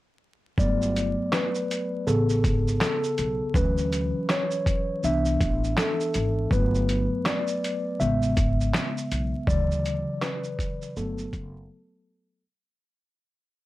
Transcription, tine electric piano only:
0, 0, Header, 1, 2, 480
1, 0, Start_track
1, 0, Key_signature, 1, "major"
1, 0, Tempo, 740741
1, 375, Time_signature, 4, 2, 24, 8
1, 8845, End_track
2, 0, Start_track
2, 0, Title_t, "Tine electric piano"
2, 0, Program_c, 0, 4
2, 383, Note_on_c, 0, 74, 87
2, 385, Note_on_c, 0, 54, 56
2, 387, Note_on_c, 0, 57, 45
2, 392, Note_on_c, 0, 59, 58
2, 516, Control_c, 0, 64, 127
2, 865, Note_on_c, 0, 71, 77
2, 873, Note_off_c, 0, 74, 0
2, 1074, Note_off_c, 0, 54, 0
2, 1075, Note_off_c, 0, 57, 0
2, 1077, Note_off_c, 0, 59, 0
2, 1339, Note_on_c, 0, 49, 53
2, 1340, Note_on_c, 0, 69, 78
2, 1343, Control_c, 0, 64, 0
2, 1345, Note_on_c, 0, 59, 56
2, 1345, Note_on_c, 0, 68, 48
2, 1354, Note_off_c, 0, 71, 0
2, 1461, Control_c, 0, 64, 127
2, 1791, Note_off_c, 0, 69, 0
2, 1824, Note_on_c, 0, 69, 86
2, 2031, Note_off_c, 0, 49, 0
2, 2034, Note_off_c, 0, 59, 0
2, 2034, Note_off_c, 0, 68, 0
2, 2299, Note_on_c, 0, 52, 56
2, 2302, Control_c, 0, 64, 0
2, 2303, Note_on_c, 0, 54, 50
2, 2304, Note_on_c, 0, 71, 89
2, 2309, Note_on_c, 0, 61, 54
2, 2314, Note_off_c, 0, 69, 0
2, 2397, Control_c, 0, 64, 127
2, 2791, Note_on_c, 0, 73, 95
2, 2794, Note_off_c, 0, 71, 0
2, 3231, Note_off_c, 0, 52, 0
2, 3233, Note_off_c, 0, 54, 0
2, 3236, Note_off_c, 0, 61, 0
2, 3237, Note_off_c, 0, 73, 0
2, 3260, Note_on_c, 0, 52, 52
2, 3264, Control_c, 0, 64, 0
2, 3267, Note_on_c, 0, 59, 48
2, 3269, Note_on_c, 0, 62, 55
2, 3270, Note_on_c, 0, 76, 95
2, 3375, Control_c, 0, 64, 127
2, 3749, Note_on_c, 0, 69, 90
2, 3756, Note_off_c, 0, 76, 0
2, 4191, Note_off_c, 0, 52, 0
2, 4195, Note_off_c, 0, 59, 0
2, 4196, Note_off_c, 0, 62, 0
2, 4196, Note_off_c, 0, 69, 0
2, 4222, Note_on_c, 0, 54, 57
2, 4224, Control_c, 0, 64, 0
2, 4225, Note_on_c, 0, 57, 47
2, 4228, Note_on_c, 0, 71, 93
2, 4231, Note_on_c, 0, 59, 59
2, 4355, Control_c, 0, 64, 127
2, 4706, Note_on_c, 0, 74, 88
2, 4716, Note_off_c, 0, 71, 0
2, 5153, Note_off_c, 0, 54, 0
2, 5154, Note_off_c, 0, 57, 0
2, 5154, Note_off_c, 0, 74, 0
2, 5157, Note_off_c, 0, 59, 0
2, 5179, Note_on_c, 0, 49, 50
2, 5182, Control_c, 0, 64, 0
2, 5182, Note_on_c, 0, 76, 87
2, 5183, Note_on_c, 0, 56, 47
2, 5186, Note_on_c, 0, 59, 55
2, 5310, Control_c, 0, 64, 127
2, 5871, Note_off_c, 0, 49, 0
2, 5872, Note_off_c, 0, 76, 0
2, 5873, Note_off_c, 0, 56, 0
2, 5875, Note_off_c, 0, 59, 0
2, 6140, Note_on_c, 0, 74, 95
2, 6142, Note_on_c, 0, 52, 54
2, 6143, Control_c, 0, 64, 0
2, 6146, Note_on_c, 0, 54, 51
2, 6150, Note_on_c, 0, 49, 57
2, 6260, Control_c, 0, 64, 127
2, 6624, Note_on_c, 0, 71, 81
2, 6631, Note_off_c, 0, 74, 0
2, 6832, Note_off_c, 0, 52, 0
2, 6835, Note_off_c, 0, 54, 0
2, 6836, Note_off_c, 0, 49, 0
2, 7073, Note_off_c, 0, 71, 0
2, 7103, Control_c, 0, 64, 0
2, 7104, Note_on_c, 0, 54, 52
2, 7107, Note_on_c, 0, 57, 49
2, 7108, Note_on_c, 0, 69, 69
2, 7113, Note_on_c, 0, 59, 57
2, 7219, Control_c, 0, 64, 127
2, 7795, Note_off_c, 0, 69, 0
2, 8034, Note_off_c, 0, 54, 0
2, 8035, Note_off_c, 0, 57, 0
2, 8038, Note_off_c, 0, 59, 0
2, 8063, Control_c, 0, 64, 0
2, 8845, End_track
0, 0, End_of_file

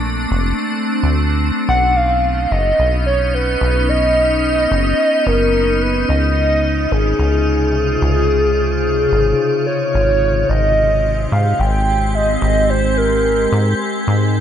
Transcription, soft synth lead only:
0, 0, Header, 1, 2, 480
1, 0, Start_track
1, 0, Key_signature, -4, "major"
1, 0, Tempo, 550459
1, 1471, Time_signature, 4, 2, 24, 8
1, 12560, End_track
2, 0, Start_track
2, 0, Title_t, "Soft synth lead"
2, 0, Program_c, 0, 80
2, 1472, Note_on_c, 0, 78, 118
2, 1712, Note_on_c, 0, 77, 118
2, 1725, Note_off_c, 0, 78, 0
2, 2192, Note_on_c, 0, 75, 112
2, 2205, Note_off_c, 0, 77, 0
2, 2667, Note_off_c, 0, 75, 0
2, 2672, Note_on_c, 0, 73, 101
2, 2913, Note_on_c, 0, 71, 104
2, 2926, Note_off_c, 0, 73, 0
2, 3391, Note_on_c, 0, 75, 127
2, 3404, Note_off_c, 0, 71, 0
2, 4592, Note_on_c, 0, 70, 106
2, 4605, Note_off_c, 0, 75, 0
2, 5072, Note_on_c, 0, 71, 94
2, 5085, Note_off_c, 0, 70, 0
2, 5306, Note_off_c, 0, 71, 0
2, 5312, Note_on_c, 0, 75, 115
2, 6030, Note_on_c, 0, 68, 101
2, 6043, Note_off_c, 0, 75, 0
2, 8425, Note_off_c, 0, 68, 0
2, 8430, Note_on_c, 0, 73, 107
2, 9150, Note_on_c, 0, 75, 115
2, 9163, Note_off_c, 0, 73, 0
2, 9871, Note_on_c, 0, 77, 105
2, 9884, Note_off_c, 0, 75, 0
2, 10111, Note_on_c, 0, 79, 122
2, 10124, Note_off_c, 0, 77, 0
2, 10592, Note_on_c, 0, 75, 110
2, 10605, Note_off_c, 0, 79, 0
2, 11071, Note_on_c, 0, 72, 105
2, 11084, Note_off_c, 0, 75, 0
2, 11311, Note_on_c, 0, 70, 99
2, 11324, Note_off_c, 0, 72, 0
2, 12271, Note_off_c, 0, 70, 0
2, 12560, End_track
0, 0, End_of_file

